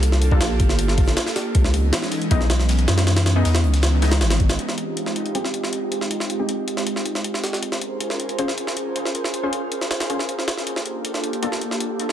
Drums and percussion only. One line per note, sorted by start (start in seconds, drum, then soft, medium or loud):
0.03 closed hi-hat medium
0.12 snare soft
0.22 closed hi-hat medium
0.31 kick medium
0.41 snare loud
0.41 closed hi-hat medium
0.60 kick medium
0.60 closed hi-hat medium
0.69 snare medium
0.69 snare soft
0.79 closed hi-hat medium
0.88 snare soft
0.98 kick loud
0.98 closed hi-hat medium
0.98 open hi-hat medium
1.08 snare medium
1.08 closed hi-hat soft
1.17 snare loud
1.17 closed hi-hat medium
1.26 snare soft
1.26 snare loud
1.36 snare soft
1.36 closed hi-hat medium
1.55 kick loud
1.55 closed hi-hat medium
1.65 snare medium
1.74 closed hi-hat medium
1.93 snare loud
1.93 closed hi-hat medium
2.02 snare soft
2.11 snare soft
2.11 closed hi-hat medium
2.22 closed hi-hat soft
2.31 kick loud
2.31 closed hi-hat medium
2.41 snare soft
2.50 snare loud
2.50 closed hi-hat medium
2.59 snare soft
2.59 closed hi-hat soft
2.69 snare loud
2.69 closed hi-hat medium
2.79 closed hi-hat soft
2.88 snare loud
2.88 closed hi-hat medium
2.98 snare loud
2.98 snare soft
2.98 closed hi-hat medium
3.07 snare loud
3.07 closed hi-hat medium
3.17 snare loud
3.17 closed hi-hat medium
3.26 snare loud
3.26 closed hi-hat medium
3.45 snare loud
3.45 closed hi-hat medium
3.55 snare loud
3.55 closed hi-hat medium
3.64 closed hi-hat medium
3.74 snare soft
3.74 closed hi-hat medium
3.83 snare loud
3.83 closed hi-hat medium
4.02 snare loud
4.02 closed hi-hat medium
4.12 snare loud
4.12 closed hi-hat medium
4.21 snare loud
4.21 closed hi-hat medium
4.30 snare medium
4.30 snare loud
4.30 closed hi-hat medium
4.40 kick medium
4.40 closed hi-hat medium
4.49 snare loud
4.49 closed hi-hat medium
4.59 closed hi-hat medium
4.69 snare medium
4.78 closed hi-hat medium
4.97 closed hi-hat medium
5.06 snare soft
5.16 closed hi-hat medium
5.26 closed hi-hat soft
5.35 closed hi-hat medium
5.44 snare soft
5.54 closed hi-hat medium
5.64 snare soft
5.73 closed hi-hat medium
5.92 closed hi-hat medium
6.01 snare soft
6.11 closed hi-hat medium
6.20 snare soft
6.30 closed hi-hat medium
6.49 closed hi-hat medium
6.68 closed hi-hat medium
6.77 snare medium
6.87 closed hi-hat medium
6.96 snare soft
7.06 closed hi-hat medium
7.15 snare soft
7.24 closed hi-hat medium
7.34 snare soft
7.44 snare soft
7.44 closed hi-hat medium
7.53 snare soft
7.63 closed hi-hat medium
7.72 snare medium
7.81 closed hi-hat medium
8.01 closed hi-hat medium
8.10 snare soft
8.20 closed hi-hat medium
8.29 closed hi-hat soft
8.39 closed hi-hat medium
8.48 snare soft
8.58 closed hi-hat medium
8.67 snare soft
8.77 closed hi-hat medium
8.96 closed hi-hat medium
9.05 snare soft
9.15 closed hi-hat medium
9.24 snare soft
9.34 closed hi-hat medium
9.53 closed hi-hat medium
9.72 closed hi-hat medium
9.81 snare soft
9.91 snare medium
9.91 closed hi-hat medium
10.00 snare medium
10.00 closed hi-hat medium
10.10 closed hi-hat medium
10.19 snare soft
10.29 closed hi-hat medium
10.39 snare soft
10.48 snare medium
10.48 closed hi-hat medium
10.57 snare soft
10.67 closed hi-hat medium
10.76 snare medium
10.86 closed hi-hat medium
11.05 closed hi-hat medium
11.14 snare soft
11.24 closed hi-hat medium
11.33 closed hi-hat soft
11.43 closed hi-hat medium
11.52 snare soft
11.61 closed hi-hat medium
11.71 snare soft
11.80 closed hi-hat medium
12.00 closed hi-hat medium
12.09 snare soft